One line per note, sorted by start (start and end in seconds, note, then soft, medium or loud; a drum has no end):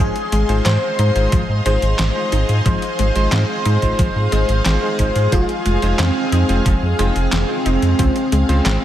0.00 0.11 G#1 loud
0.00 0.16 F3 loud
0.00 0.14 G#3 medium
0.00 0.14 D#4 medium
0.00 0.14 F4 medium
0.00 0.56 G#4 loud
0.00 8.85 G#4 medium
0.00 0.14 C5 medium
0.00 7.95 D#5 medium
0.00 8.85 F5 medium
0.00 8.85 C6 medium
0.16 closed hi-hat soft
0.32 0.44 G#1 medium
0.32 0.64 G#3 medium
0.32 closed hi-hat medium
0.49 0.61 G#1 medium
0.49 1.12 G#3 medium
0.49 1.12 D#4 medium
0.49 1.12 F4 medium
0.49 1.12 C5 loud
0.49 closed hi-hat soft
0.65 0.77 G#2 loud
0.65 0.82 C4 medium
0.65 1.52 C5 loud
0.65 snare loud
0.65 clap medium
0.65 closed hi-hat medium
0.99 1.11 G#2 loud
0.99 1.27 D#4 medium
0.99 closed hi-hat medium
1.16 1.28 G#1 medium
1.16 1.39 G#3 medium
1.16 1.39 D#4 medium
1.16 1.39 F4 medium
1.16 1.39 C5 medium
1.16 closed hi-hat medium
1.32 1.44 G#1 loud
1.32 1.49 F3 loud
1.32 kick loud
1.32 closed hi-hat medium
1.49 1.61 G#2 medium
1.65 1.78 G#1 medium
1.65 1.97 G#3 medium
1.65 1.80 G#3 medium
1.65 1.80 D#4 medium
1.65 1.80 F4 medium
1.65 5.34 C5 loud
1.65 1.80 C5 loud
1.65 5.32 C5 medium
1.65 closed hi-hat medium
1.82 1.94 G#1 medium
1.82 closed hi-hat medium
1.99 2.11 G#1 loud
1.99 2.16 C4 medium
1.99 snare loud
1.99 clap medium
1.99 closed hi-hat medium
2.16 2.62 G#3 medium
2.16 2.62 D#4 medium
2.16 2.62 F4 medium
2.16 2.62 C5 medium
2.32 2.44 G#1 loud
2.32 2.60 D#4 medium
2.32 closed hi-hat medium
2.49 2.61 G#2 medium
2.49 closed hi-hat medium
2.66 2.78 G#1 loud
2.66 2.82 F3 loud
2.66 2.80 G#3 medium
2.66 2.80 D#4 medium
2.66 2.80 F4 medium
2.66 2.80 C5 medium
2.66 kick loud
2.66 closed hi-hat medium
2.82 closed hi-hat soft
2.99 3.11 G#1 medium
2.99 3.31 G#3 medium
2.99 closed hi-hat medium
3.16 3.28 G#1 medium
3.16 3.78 G#3 loud
3.16 3.78 D#4 medium
3.16 3.78 F4 medium
3.16 3.78 C5 loud
3.16 closed hi-hat medium
3.32 3.44 G#2 loud
3.32 3.49 C4 medium
3.32 snare loud
3.32 clap loud
3.32 closed hi-hat medium
3.66 3.78 G#2 loud
3.66 3.94 D#4 medium
3.66 closed hi-hat medium
3.82 3.94 G#1 medium
3.82 4.06 G#3 medium
3.82 4.06 D#4 medium
3.82 4.06 F4 medium
3.82 4.06 C5 loud
3.82 kick medium
3.82 closed hi-hat medium
3.99 4.11 G#1 loud
3.99 4.16 F3 loud
3.99 kick loud
3.99 closed hi-hat medium
4.16 4.28 G#2 medium
4.32 4.44 G#1 loud
4.32 4.64 G#3 medium
4.32 4.47 G#3 medium
4.32 4.47 D#4 medium
4.32 4.47 F4 medium
4.32 4.47 C5 loud
4.32 closed hi-hat medium
4.49 4.61 G#1 medium
4.49 closed hi-hat medium
4.66 4.78 G#1 loud
4.66 4.82 C4 medium
4.66 snare loud
4.66 clap medium
4.66 closed hi-hat medium
4.82 5.28 G#3 medium
4.82 5.28 D#4 medium
4.82 5.28 F4 medium
4.82 5.28 C5 medium
4.99 5.11 G#1 medium
4.99 5.27 D#4 medium
4.99 kick medium
4.99 closed hi-hat medium
5.16 5.28 G#2 medium
5.16 closed hi-hat medium
5.32 5.44 F1 loud
5.32 5.49 F3 loud
5.32 5.47 G#3 medium
5.32 5.47 D#4 medium
5.32 5.99 F4 loud
5.32 6.00 F4 loud
5.32 5.47 F4 medium
5.32 5.47 C5 medium
5.32 kick loud
5.32 closed hi-hat medium
5.49 closed hi-hat soft
5.66 5.78 F1 medium
5.66 5.97 G#3 medium
5.66 closed hi-hat medium
5.82 5.94 F1 medium
5.82 6.45 G#3 medium
5.82 6.45 D#4 medium
5.82 6.45 F4 medium
5.82 6.45 C5 loud
5.82 closed hi-hat medium
5.99 6.11 F2 loud
5.99 6.85 C4 loud
5.99 6.85 C4 medium
5.99 6.16 C4 medium
5.99 snare loud
5.99 clap loud
5.99 closed hi-hat medium
6.32 6.44 F2 loud
6.32 6.60 D#4 medium
6.32 closed hi-hat medium
6.49 6.61 F1 medium
6.49 6.72 G#3 medium
6.49 6.72 D#4 medium
6.49 6.72 F4 medium
6.49 6.72 C5 medium
6.49 closed hi-hat medium
6.66 6.78 F1 loud
6.66 6.82 F3 loud
6.66 kick loud
6.66 closed hi-hat medium
6.82 6.94 F2 medium
6.99 7.11 F1 loud
6.99 7.14 G#3 medium
6.99 7.31 G#3 medium
6.99 8.85 C4 loud
6.99 7.14 D#4 medium
6.99 7.14 F4 medium
6.99 7.14 C5 loud
6.99 closed hi-hat medium
7.16 7.28 F1 medium
7.16 closed hi-hat medium
7.32 7.44 F1 loud
7.32 7.49 C4 medium
7.32 snare loud
7.32 clap loud
7.32 closed hi-hat medium
7.49 7.95 G#3 medium
7.49 7.95 D#4 medium
7.49 7.95 F4 medium
7.49 7.95 C5 medium
7.66 7.78 F1 loud
7.66 7.94 D#4 medium
7.66 closed hi-hat medium
7.82 7.94 F2 medium
7.82 closed hi-hat medium
7.99 8.11 C#2 loud
7.99 8.16 F3 loud
7.99 8.14 G#3 medium
7.99 8.14 C#4 medium
7.99 8.14 F4 medium
7.99 8.14 C5 medium
7.99 kick loud
7.99 closed hi-hat medium
8.16 closed hi-hat soft
8.32 8.44 C#2 medium
8.32 8.64 G#3 medium
8.32 closed hi-hat medium
8.49 8.61 C#2 medium
8.49 8.85 C#3 medium
8.49 8.85 G#3 loud
8.49 8.85 F4 medium
8.49 8.85 C5 loud
8.49 closed hi-hat medium
8.65 8.77 G#1 loud
8.65 8.82 C4 medium
8.65 snare loud
8.65 clap loud
8.65 closed hi-hat medium